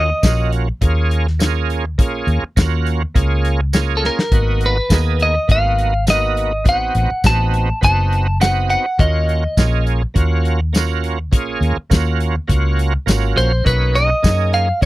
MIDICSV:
0, 0, Header, 1, 6, 480
1, 0, Start_track
1, 0, Key_signature, -6, "minor"
1, 0, Tempo, 583658
1, 1632, Time_signature, 4, 2, 24, 8
1, 12216, End_track
2, 0, Start_track
2, 0, Title_t, "Clean electric guitar"
2, 0, Program_c, 0, 27
2, 0, Note_on_c, 0, 75, 75
2, 412, Note_off_c, 0, 75, 0
2, 3265, Note_on_c, 0, 69, 53
2, 3316, Note_off_c, 0, 69, 0
2, 3341, Note_on_c, 0, 70, 75
2, 3821, Note_off_c, 0, 70, 0
2, 3831, Note_on_c, 0, 71, 79
2, 4297, Note_on_c, 0, 75, 80
2, 4306, Note_off_c, 0, 71, 0
2, 4509, Note_off_c, 0, 75, 0
2, 4536, Note_on_c, 0, 77, 95
2, 4972, Note_off_c, 0, 77, 0
2, 5017, Note_on_c, 0, 75, 88
2, 5497, Note_off_c, 0, 75, 0
2, 5500, Note_on_c, 0, 78, 96
2, 5971, Note_off_c, 0, 78, 0
2, 5974, Note_on_c, 0, 81, 101
2, 6410, Note_off_c, 0, 81, 0
2, 6451, Note_on_c, 0, 81, 104
2, 6889, Note_off_c, 0, 81, 0
2, 6921, Note_on_c, 0, 78, 85
2, 7147, Note_off_c, 0, 78, 0
2, 7157, Note_on_c, 0, 78, 86
2, 7401, Note_off_c, 0, 78, 0
2, 7403, Note_on_c, 0, 75, 76
2, 8084, Note_off_c, 0, 75, 0
2, 10999, Note_on_c, 0, 72, 88
2, 11217, Note_off_c, 0, 72, 0
2, 11240, Note_on_c, 0, 71, 85
2, 11476, Note_on_c, 0, 75, 92
2, 11480, Note_off_c, 0, 71, 0
2, 11954, Note_off_c, 0, 75, 0
2, 11957, Note_on_c, 0, 77, 93
2, 12175, Note_off_c, 0, 77, 0
2, 12216, End_track
3, 0, Start_track
3, 0, Title_t, "Tonewheel organ"
3, 0, Program_c, 1, 16
3, 0, Note_on_c, 1, 61, 65
3, 0, Note_on_c, 1, 65, 70
3, 0, Note_on_c, 1, 66, 80
3, 83, Note_off_c, 1, 61, 0
3, 84, Note_off_c, 1, 65, 0
3, 84, Note_off_c, 1, 66, 0
3, 184, Note_on_c, 1, 58, 80
3, 189, Note_on_c, 1, 61, 77
3, 190, Note_on_c, 1, 65, 74
3, 194, Note_on_c, 1, 66, 82
3, 561, Note_off_c, 1, 58, 0
3, 563, Note_off_c, 1, 61, 0
3, 564, Note_off_c, 1, 65, 0
3, 566, Note_off_c, 1, 66, 0
3, 667, Note_on_c, 1, 58, 82
3, 670, Note_on_c, 1, 61, 81
3, 670, Note_on_c, 1, 65, 81
3, 677, Note_on_c, 1, 68, 98
3, 1043, Note_off_c, 1, 58, 0
3, 1044, Note_off_c, 1, 61, 0
3, 1044, Note_off_c, 1, 65, 0
3, 1047, Note_off_c, 1, 68, 0
3, 1146, Note_on_c, 1, 58, 92
3, 1148, Note_on_c, 1, 61, 87
3, 1149, Note_on_c, 1, 65, 84
3, 1152, Note_on_c, 1, 68, 104
3, 1522, Note_off_c, 1, 58, 0
3, 1523, Note_off_c, 1, 61, 0
3, 1524, Note_off_c, 1, 65, 0
3, 1525, Note_off_c, 1, 68, 0
3, 1629, Note_on_c, 1, 58, 83
3, 1637, Note_on_c, 1, 65, 77
3, 1638, Note_on_c, 1, 61, 76
3, 1642, Note_on_c, 1, 68, 92
3, 2004, Note_off_c, 1, 58, 0
3, 2008, Note_off_c, 1, 61, 0
3, 2008, Note_off_c, 1, 65, 0
3, 2011, Note_off_c, 1, 68, 0
3, 2109, Note_on_c, 1, 58, 92
3, 2112, Note_on_c, 1, 61, 89
3, 2117, Note_on_c, 1, 65, 88
3, 2122, Note_on_c, 1, 66, 106
3, 2484, Note_off_c, 1, 58, 0
3, 2485, Note_off_c, 1, 61, 0
3, 2488, Note_off_c, 1, 65, 0
3, 2490, Note_off_c, 1, 66, 0
3, 2587, Note_on_c, 1, 58, 83
3, 2591, Note_on_c, 1, 61, 84
3, 2592, Note_on_c, 1, 65, 84
3, 2596, Note_on_c, 1, 68, 95
3, 2963, Note_off_c, 1, 58, 0
3, 2965, Note_off_c, 1, 61, 0
3, 2966, Note_off_c, 1, 65, 0
3, 2968, Note_off_c, 1, 68, 0
3, 3069, Note_on_c, 1, 58, 89
3, 3070, Note_on_c, 1, 61, 83
3, 3077, Note_on_c, 1, 65, 84
3, 3077, Note_on_c, 1, 68, 105
3, 3444, Note_off_c, 1, 58, 0
3, 3444, Note_off_c, 1, 61, 0
3, 3448, Note_off_c, 1, 65, 0
3, 3448, Note_off_c, 1, 68, 0
3, 3551, Note_on_c, 1, 58, 67
3, 3557, Note_on_c, 1, 63, 66
3, 3558, Note_on_c, 1, 59, 65
3, 3561, Note_on_c, 1, 66, 82
3, 3925, Note_off_c, 1, 58, 0
3, 3928, Note_off_c, 1, 59, 0
3, 3928, Note_off_c, 1, 63, 0
3, 3930, Note_off_c, 1, 66, 0
3, 4024, Note_on_c, 1, 58, 79
3, 4030, Note_on_c, 1, 59, 77
3, 4030, Note_on_c, 1, 68, 88
3, 4032, Note_on_c, 1, 63, 71
3, 4401, Note_off_c, 1, 58, 0
3, 4404, Note_off_c, 1, 59, 0
3, 4405, Note_off_c, 1, 63, 0
3, 4405, Note_off_c, 1, 68, 0
3, 4504, Note_on_c, 1, 58, 76
3, 4505, Note_on_c, 1, 59, 64
3, 4511, Note_on_c, 1, 63, 70
3, 4513, Note_on_c, 1, 66, 79
3, 4881, Note_off_c, 1, 58, 0
3, 4882, Note_off_c, 1, 59, 0
3, 4885, Note_off_c, 1, 63, 0
3, 4886, Note_off_c, 1, 66, 0
3, 4990, Note_on_c, 1, 58, 76
3, 4993, Note_on_c, 1, 59, 73
3, 4993, Note_on_c, 1, 63, 73
3, 4997, Note_on_c, 1, 66, 87
3, 5364, Note_off_c, 1, 58, 0
3, 5365, Note_off_c, 1, 59, 0
3, 5366, Note_off_c, 1, 63, 0
3, 5367, Note_off_c, 1, 66, 0
3, 5463, Note_on_c, 1, 59, 69
3, 5466, Note_on_c, 1, 60, 64
3, 5466, Note_on_c, 1, 63, 66
3, 5469, Note_on_c, 1, 66, 80
3, 5841, Note_off_c, 1, 59, 0
3, 5842, Note_off_c, 1, 60, 0
3, 5842, Note_off_c, 1, 63, 0
3, 5843, Note_off_c, 1, 66, 0
3, 5953, Note_on_c, 1, 59, 82
3, 5955, Note_on_c, 1, 60, 70
3, 5962, Note_on_c, 1, 63, 75
3, 5964, Note_on_c, 1, 66, 86
3, 6326, Note_off_c, 1, 59, 0
3, 6326, Note_off_c, 1, 60, 0
3, 6330, Note_off_c, 1, 63, 0
3, 6331, Note_off_c, 1, 66, 0
3, 6424, Note_on_c, 1, 59, 73
3, 6427, Note_on_c, 1, 60, 68
3, 6433, Note_on_c, 1, 63, 68
3, 6433, Note_on_c, 1, 66, 79
3, 6801, Note_off_c, 1, 59, 0
3, 6802, Note_off_c, 1, 60, 0
3, 6805, Note_off_c, 1, 63, 0
3, 6805, Note_off_c, 1, 66, 0
3, 6909, Note_on_c, 1, 59, 76
3, 6911, Note_on_c, 1, 63, 71
3, 6914, Note_on_c, 1, 60, 74
3, 6917, Note_on_c, 1, 66, 90
3, 7283, Note_off_c, 1, 59, 0
3, 7284, Note_off_c, 1, 63, 0
3, 7285, Note_off_c, 1, 60, 0
3, 7287, Note_off_c, 1, 66, 0
3, 7390, Note_on_c, 1, 58, 73
3, 7391, Note_on_c, 1, 61, 66
3, 7394, Note_on_c, 1, 65, 65
3, 7394, Note_on_c, 1, 66, 77
3, 7763, Note_off_c, 1, 58, 0
3, 7764, Note_off_c, 1, 61, 0
3, 7766, Note_off_c, 1, 65, 0
3, 7766, Note_off_c, 1, 66, 0
3, 7870, Note_on_c, 1, 58, 75
3, 7873, Note_on_c, 1, 61, 74
3, 7877, Note_on_c, 1, 65, 69
3, 7883, Note_on_c, 1, 68, 94
3, 8243, Note_off_c, 1, 58, 0
3, 8245, Note_off_c, 1, 61, 0
3, 8247, Note_off_c, 1, 65, 0
3, 8249, Note_off_c, 1, 68, 0
3, 8340, Note_on_c, 1, 58, 86
3, 8344, Note_on_c, 1, 61, 87
3, 8347, Note_on_c, 1, 65, 83
3, 8348, Note_on_c, 1, 66, 94
3, 8718, Note_off_c, 1, 58, 0
3, 8720, Note_off_c, 1, 61, 0
3, 8722, Note_off_c, 1, 65, 0
3, 8722, Note_off_c, 1, 66, 0
3, 8822, Note_on_c, 1, 58, 93
3, 8828, Note_on_c, 1, 61, 87
3, 8833, Note_on_c, 1, 65, 92
3, 8835, Note_on_c, 1, 66, 106
3, 9199, Note_off_c, 1, 58, 0
3, 9201, Note_off_c, 1, 61, 0
3, 9204, Note_off_c, 1, 65, 0
3, 9205, Note_off_c, 1, 66, 0
3, 9306, Note_on_c, 1, 61, 75
3, 9308, Note_on_c, 1, 58, 88
3, 9313, Note_on_c, 1, 65, 75
3, 9317, Note_on_c, 1, 68, 95
3, 9680, Note_off_c, 1, 61, 0
3, 9681, Note_off_c, 1, 58, 0
3, 9684, Note_off_c, 1, 65, 0
3, 9686, Note_off_c, 1, 68, 0
3, 9785, Note_on_c, 1, 58, 93
3, 9789, Note_on_c, 1, 61, 91
3, 9792, Note_on_c, 1, 65, 86
3, 9794, Note_on_c, 1, 66, 109
3, 10160, Note_off_c, 1, 58, 0
3, 10161, Note_off_c, 1, 61, 0
3, 10163, Note_off_c, 1, 65, 0
3, 10164, Note_off_c, 1, 66, 0
3, 10260, Note_on_c, 1, 58, 91
3, 10263, Note_on_c, 1, 61, 79
3, 10265, Note_on_c, 1, 65, 78
3, 10266, Note_on_c, 1, 66, 95
3, 10637, Note_off_c, 1, 58, 0
3, 10638, Note_off_c, 1, 61, 0
3, 10639, Note_off_c, 1, 65, 0
3, 10640, Note_off_c, 1, 66, 0
3, 10741, Note_on_c, 1, 58, 93
3, 10748, Note_on_c, 1, 61, 83
3, 10749, Note_on_c, 1, 65, 85
3, 10753, Note_on_c, 1, 66, 103
3, 11117, Note_off_c, 1, 58, 0
3, 11121, Note_off_c, 1, 61, 0
3, 11121, Note_off_c, 1, 65, 0
3, 11123, Note_off_c, 1, 66, 0
3, 11217, Note_on_c, 1, 58, 71
3, 11223, Note_on_c, 1, 61, 65
3, 11223, Note_on_c, 1, 63, 67
3, 11225, Note_on_c, 1, 66, 77
3, 11595, Note_off_c, 1, 58, 0
3, 11598, Note_off_c, 1, 61, 0
3, 11598, Note_off_c, 1, 63, 0
3, 11599, Note_off_c, 1, 66, 0
3, 11699, Note_on_c, 1, 58, 78
3, 11703, Note_on_c, 1, 61, 74
3, 11704, Note_on_c, 1, 63, 76
3, 11708, Note_on_c, 1, 68, 90
3, 12075, Note_off_c, 1, 58, 0
3, 12078, Note_off_c, 1, 61, 0
3, 12078, Note_off_c, 1, 63, 0
3, 12080, Note_off_c, 1, 68, 0
3, 12181, Note_on_c, 1, 58, 76
3, 12185, Note_on_c, 1, 61, 66
3, 12190, Note_on_c, 1, 63, 69
3, 12216, Note_off_c, 1, 58, 0
3, 12216, Note_off_c, 1, 61, 0
3, 12216, Note_off_c, 1, 63, 0
3, 12216, End_track
4, 0, Start_track
4, 0, Title_t, "Fingered electric bass"
4, 0, Program_c, 2, 33
4, 0, Note_on_c, 2, 39, 94
4, 93, Note_off_c, 2, 39, 0
4, 191, Note_on_c, 2, 34, 80
4, 573, Note_off_c, 2, 34, 0
4, 669, Note_on_c, 2, 39, 92
4, 1631, Note_off_c, 2, 39, 0
4, 1631, Note_on_c, 2, 34, 95
4, 1823, Note_off_c, 2, 34, 0
4, 1867, Note_on_c, 2, 39, 84
4, 1970, Note_off_c, 2, 39, 0
4, 2116, Note_on_c, 2, 39, 86
4, 2496, Note_off_c, 2, 39, 0
4, 2597, Note_on_c, 2, 37, 96
4, 3358, Note_off_c, 2, 37, 0
4, 3548, Note_on_c, 2, 32, 84
4, 3931, Note_off_c, 2, 32, 0
4, 4031, Note_on_c, 2, 39, 86
4, 4413, Note_off_c, 2, 39, 0
4, 4515, Note_on_c, 2, 32, 88
4, 5471, Note_off_c, 2, 32, 0
4, 5471, Note_on_c, 2, 33, 93
4, 5662, Note_off_c, 2, 33, 0
4, 5715, Note_on_c, 2, 33, 80
4, 5814, Note_off_c, 2, 33, 0
4, 5955, Note_on_c, 2, 33, 90
4, 6335, Note_off_c, 2, 33, 0
4, 6436, Note_on_c, 2, 30, 101
4, 7197, Note_off_c, 2, 30, 0
4, 7396, Note_on_c, 2, 39, 92
4, 7776, Note_off_c, 2, 39, 0
4, 7873, Note_on_c, 2, 34, 88
4, 8253, Note_off_c, 2, 34, 0
4, 8353, Note_on_c, 2, 39, 85
4, 9315, Note_off_c, 2, 39, 0
4, 9315, Note_on_c, 2, 34, 94
4, 9504, Note_off_c, 2, 34, 0
4, 9546, Note_on_c, 2, 39, 80
4, 9648, Note_off_c, 2, 39, 0
4, 9798, Note_on_c, 2, 39, 82
4, 10175, Note_off_c, 2, 39, 0
4, 10274, Note_on_c, 2, 37, 98
4, 10653, Note_off_c, 2, 37, 0
4, 10745, Note_on_c, 2, 32, 83
4, 10962, Note_off_c, 2, 32, 0
4, 10989, Note_on_c, 2, 34, 85
4, 11204, Note_off_c, 2, 34, 0
4, 11230, Note_on_c, 2, 35, 92
4, 11610, Note_off_c, 2, 35, 0
4, 11714, Note_on_c, 2, 42, 86
4, 12092, Note_off_c, 2, 42, 0
4, 12189, Note_on_c, 2, 35, 91
4, 12216, Note_off_c, 2, 35, 0
4, 12216, End_track
5, 0, Start_track
5, 0, Title_t, "Muted fingered electric bass strokes"
5, 1993, Note_on_c, 9, 29, 32
5, 2075, Note_off_c, 9, 29, 0
5, 5850, Note_on_c, 9, 29, 33
5, 5932, Note_off_c, 9, 29, 0
5, 9675, Note_on_c, 9, 29, 35
5, 9757, Note_off_c, 9, 29, 0
5, 12216, End_track
6, 0, Start_track
6, 0, Title_t, "Drums"
6, 190, Note_on_c, 9, 42, 74
6, 190, Note_on_c, 9, 54, 107
6, 191, Note_on_c, 9, 36, 74
6, 201, Note_on_c, 9, 38, 109
6, 272, Note_off_c, 9, 42, 0
6, 272, Note_off_c, 9, 54, 0
6, 274, Note_off_c, 9, 36, 0
6, 283, Note_off_c, 9, 38, 0
6, 431, Note_on_c, 9, 42, 62
6, 513, Note_off_c, 9, 42, 0
6, 671, Note_on_c, 9, 36, 84
6, 671, Note_on_c, 9, 42, 80
6, 753, Note_off_c, 9, 36, 0
6, 753, Note_off_c, 9, 42, 0
6, 914, Note_on_c, 9, 42, 61
6, 996, Note_off_c, 9, 42, 0
6, 1047, Note_on_c, 9, 38, 31
6, 1129, Note_off_c, 9, 38, 0
6, 1153, Note_on_c, 9, 42, 86
6, 1153, Note_on_c, 9, 54, 107
6, 1164, Note_on_c, 9, 38, 105
6, 1236, Note_off_c, 9, 42, 0
6, 1236, Note_off_c, 9, 54, 0
6, 1246, Note_off_c, 9, 38, 0
6, 1398, Note_on_c, 9, 42, 62
6, 1480, Note_off_c, 9, 42, 0
6, 1635, Note_on_c, 9, 36, 107
6, 1636, Note_on_c, 9, 42, 83
6, 1717, Note_off_c, 9, 36, 0
6, 1718, Note_off_c, 9, 42, 0
6, 1872, Note_on_c, 9, 42, 59
6, 1954, Note_off_c, 9, 42, 0
6, 2113, Note_on_c, 9, 36, 79
6, 2115, Note_on_c, 9, 42, 84
6, 2115, Note_on_c, 9, 54, 104
6, 2126, Note_on_c, 9, 38, 110
6, 2196, Note_off_c, 9, 36, 0
6, 2197, Note_off_c, 9, 42, 0
6, 2197, Note_off_c, 9, 54, 0
6, 2208, Note_off_c, 9, 38, 0
6, 2355, Note_on_c, 9, 42, 59
6, 2438, Note_off_c, 9, 42, 0
6, 2594, Note_on_c, 9, 36, 78
6, 2598, Note_on_c, 9, 42, 80
6, 2676, Note_off_c, 9, 36, 0
6, 2680, Note_off_c, 9, 42, 0
6, 2835, Note_on_c, 9, 42, 61
6, 2917, Note_off_c, 9, 42, 0
6, 3070, Note_on_c, 9, 42, 78
6, 3070, Note_on_c, 9, 54, 109
6, 3080, Note_on_c, 9, 38, 106
6, 3152, Note_off_c, 9, 42, 0
6, 3152, Note_off_c, 9, 54, 0
6, 3162, Note_off_c, 9, 38, 0
6, 3324, Note_on_c, 9, 38, 56
6, 3406, Note_off_c, 9, 38, 0
6, 3445, Note_on_c, 9, 38, 93
6, 3527, Note_off_c, 9, 38, 0
6, 3550, Note_on_c, 9, 36, 100
6, 3551, Note_on_c, 9, 42, 75
6, 3633, Note_off_c, 9, 36, 0
6, 3633, Note_off_c, 9, 42, 0
6, 3788, Note_on_c, 9, 42, 57
6, 3870, Note_off_c, 9, 42, 0
6, 4031, Note_on_c, 9, 42, 77
6, 4031, Note_on_c, 9, 54, 102
6, 4032, Note_on_c, 9, 36, 76
6, 4042, Note_on_c, 9, 38, 104
6, 4114, Note_off_c, 9, 36, 0
6, 4114, Note_off_c, 9, 42, 0
6, 4114, Note_off_c, 9, 54, 0
6, 4124, Note_off_c, 9, 38, 0
6, 4272, Note_on_c, 9, 42, 58
6, 4355, Note_off_c, 9, 42, 0
6, 4514, Note_on_c, 9, 36, 83
6, 4517, Note_on_c, 9, 42, 83
6, 4596, Note_off_c, 9, 36, 0
6, 4599, Note_off_c, 9, 42, 0
6, 4757, Note_on_c, 9, 42, 61
6, 4839, Note_off_c, 9, 42, 0
6, 4991, Note_on_c, 9, 42, 85
6, 4991, Note_on_c, 9, 54, 106
6, 5002, Note_on_c, 9, 38, 108
6, 5074, Note_off_c, 9, 42, 0
6, 5074, Note_off_c, 9, 54, 0
6, 5084, Note_off_c, 9, 38, 0
6, 5238, Note_on_c, 9, 42, 59
6, 5321, Note_off_c, 9, 42, 0
6, 5471, Note_on_c, 9, 42, 80
6, 5475, Note_on_c, 9, 36, 106
6, 5553, Note_off_c, 9, 42, 0
6, 5557, Note_off_c, 9, 36, 0
6, 5713, Note_on_c, 9, 42, 59
6, 5795, Note_off_c, 9, 42, 0
6, 5952, Note_on_c, 9, 42, 83
6, 5952, Note_on_c, 9, 54, 104
6, 5955, Note_on_c, 9, 36, 73
6, 5963, Note_on_c, 9, 38, 111
6, 6035, Note_off_c, 9, 42, 0
6, 6035, Note_off_c, 9, 54, 0
6, 6037, Note_off_c, 9, 36, 0
6, 6045, Note_off_c, 9, 38, 0
6, 6197, Note_on_c, 9, 42, 63
6, 6280, Note_off_c, 9, 42, 0
6, 6437, Note_on_c, 9, 36, 80
6, 6439, Note_on_c, 9, 42, 80
6, 6520, Note_off_c, 9, 36, 0
6, 6521, Note_off_c, 9, 42, 0
6, 6682, Note_on_c, 9, 42, 57
6, 6764, Note_off_c, 9, 42, 0
6, 6918, Note_on_c, 9, 42, 81
6, 6918, Note_on_c, 9, 54, 102
6, 6929, Note_on_c, 9, 38, 107
6, 7001, Note_off_c, 9, 42, 0
6, 7001, Note_off_c, 9, 54, 0
6, 7011, Note_off_c, 9, 38, 0
6, 7154, Note_on_c, 9, 42, 58
6, 7236, Note_off_c, 9, 42, 0
6, 7395, Note_on_c, 9, 42, 75
6, 7396, Note_on_c, 9, 36, 111
6, 7477, Note_off_c, 9, 42, 0
6, 7478, Note_off_c, 9, 36, 0
6, 7639, Note_on_c, 9, 42, 51
6, 7721, Note_off_c, 9, 42, 0
6, 7874, Note_on_c, 9, 36, 76
6, 7874, Note_on_c, 9, 42, 69
6, 7874, Note_on_c, 9, 54, 98
6, 7885, Note_on_c, 9, 38, 105
6, 7956, Note_off_c, 9, 36, 0
6, 7956, Note_off_c, 9, 42, 0
6, 7956, Note_off_c, 9, 54, 0
6, 7967, Note_off_c, 9, 38, 0
6, 8114, Note_on_c, 9, 42, 58
6, 8196, Note_off_c, 9, 42, 0
6, 8353, Note_on_c, 9, 42, 78
6, 8354, Note_on_c, 9, 36, 77
6, 8435, Note_off_c, 9, 42, 0
6, 8436, Note_off_c, 9, 36, 0
6, 8595, Note_on_c, 9, 42, 59
6, 8677, Note_off_c, 9, 42, 0
6, 8837, Note_on_c, 9, 42, 81
6, 8837, Note_on_c, 9, 54, 106
6, 8847, Note_on_c, 9, 38, 105
6, 8919, Note_off_c, 9, 42, 0
6, 8919, Note_off_c, 9, 54, 0
6, 8930, Note_off_c, 9, 38, 0
6, 9077, Note_on_c, 9, 42, 63
6, 9159, Note_off_c, 9, 42, 0
6, 9314, Note_on_c, 9, 36, 105
6, 9315, Note_on_c, 9, 42, 85
6, 9397, Note_off_c, 9, 36, 0
6, 9397, Note_off_c, 9, 42, 0
6, 9560, Note_on_c, 9, 42, 59
6, 9642, Note_off_c, 9, 42, 0
6, 9796, Note_on_c, 9, 36, 75
6, 9799, Note_on_c, 9, 42, 78
6, 9799, Note_on_c, 9, 54, 104
6, 9809, Note_on_c, 9, 38, 103
6, 9878, Note_off_c, 9, 36, 0
6, 9881, Note_off_c, 9, 42, 0
6, 9881, Note_off_c, 9, 54, 0
6, 9891, Note_off_c, 9, 38, 0
6, 10036, Note_on_c, 9, 42, 68
6, 10119, Note_off_c, 9, 42, 0
6, 10275, Note_on_c, 9, 36, 86
6, 10275, Note_on_c, 9, 42, 80
6, 10357, Note_off_c, 9, 42, 0
6, 10358, Note_off_c, 9, 36, 0
6, 10518, Note_on_c, 9, 42, 58
6, 10601, Note_off_c, 9, 42, 0
6, 10756, Note_on_c, 9, 42, 83
6, 10756, Note_on_c, 9, 54, 113
6, 10767, Note_on_c, 9, 38, 106
6, 10839, Note_off_c, 9, 42, 0
6, 10839, Note_off_c, 9, 54, 0
6, 10849, Note_off_c, 9, 38, 0
6, 11001, Note_on_c, 9, 42, 62
6, 11083, Note_off_c, 9, 42, 0
6, 11234, Note_on_c, 9, 36, 101
6, 11236, Note_on_c, 9, 42, 71
6, 11316, Note_off_c, 9, 36, 0
6, 11318, Note_off_c, 9, 42, 0
6, 11474, Note_on_c, 9, 42, 60
6, 11556, Note_off_c, 9, 42, 0
6, 11712, Note_on_c, 9, 36, 76
6, 11713, Note_on_c, 9, 42, 73
6, 11713, Note_on_c, 9, 54, 102
6, 11723, Note_on_c, 9, 38, 108
6, 11794, Note_off_c, 9, 36, 0
6, 11795, Note_off_c, 9, 42, 0
6, 11795, Note_off_c, 9, 54, 0
6, 11806, Note_off_c, 9, 38, 0
6, 11952, Note_on_c, 9, 42, 58
6, 12034, Note_off_c, 9, 42, 0
6, 12188, Note_on_c, 9, 42, 77
6, 12190, Note_on_c, 9, 36, 85
6, 12216, Note_off_c, 9, 36, 0
6, 12216, Note_off_c, 9, 42, 0
6, 12216, End_track
0, 0, End_of_file